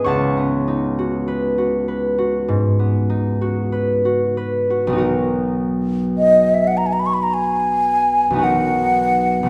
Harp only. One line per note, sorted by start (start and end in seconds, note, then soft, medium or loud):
0.00 0.11 G#2 soft
0.00 0.36 B3 soft
0.00 2.17 C#4 soft
0.00 3.65 G#4 medium
0.00 1.27 B4 soft
0.00 3.14 D#5 medium
0.00 2.33 E5 medium
0.00 3.16 G#5 medium
0.00 3.17 B5 medium
0.00 0.63 D#6 medium
0.00 2.34 E6 medium
0.04 3.96 C#2 medium
0.04 3.94 C#5 medium
0.04 3.96 F#5 medium
0.04 3.98 A5 medium
0.04 3.94 C#6 medium
0.37 2.78 B3 soft
0.68 3.08 D#4 soft
0.99 1.57 F#4 soft
1.28 1.87 B4 soft
1.58 2.17 F#4 soft
1.88 3.71 B4 soft
2.18 3.40 F#4 soft
2.48 5.05 G#2 soft
2.79 4.88 B3 soft
3.10 4.91 D#4 soft
3.41 4.04 F#4 soft
3.72 4.36 B4 soft
4.05 4.69 F#4 soft
4.37 8.27 B4 soft
4.70 4.95 F#4 soft
4.87 8.29 B1 medium
4.87 8.32 B3 soft
4.93 8.34 D#4 soft
4.93 8.37 F#4 soft
4.98 8.41 A#4 soft
8.30 9.42 B1 medium
8.30 9.44 B3 soft
8.35 9.47 D#4 soft
8.35 9.49 F#4 soft
8.42 9.49 A#4 soft
9.43 9.49 B1 medium
9.43 9.49 B3 soft